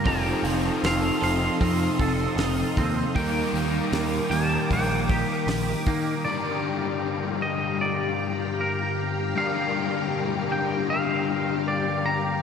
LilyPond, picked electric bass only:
\new Staff \with { instrumentName = "Picked electric bass" } { \clef bass \time 4/4 \key g \minor \tempo 4 = 77 f,,8 f,,8 f,,8 f,,8 f,8 f,,8 f,,8 ees,8 | ees,8 ees,8 ees,8 ees,8 bes,,4 bes,,8 ees8 | r1 | r1 | }